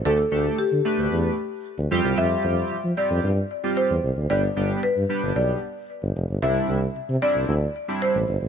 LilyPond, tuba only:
\new Staff \with { instrumentName = "Tuba" } { \clef bass \time 4/4 \key c \major \tempo 4 = 113 d,8 d,8 d16 d16 r16 d,16 e,8 r8. d,16 f,16 c,16 | f,8 f,8 f16 f16 r16 f,16 g,8 r8. e,16 c,16 d,16 | g,,8 g,,8 g,16 g,16 r16 g,,16 b,,8 r8. g,,16 f,,16 g,,16 | c,8 c,8 c16 c16 r16 c,16 d,8 r8. a,,16 g,,16 a,,16 | }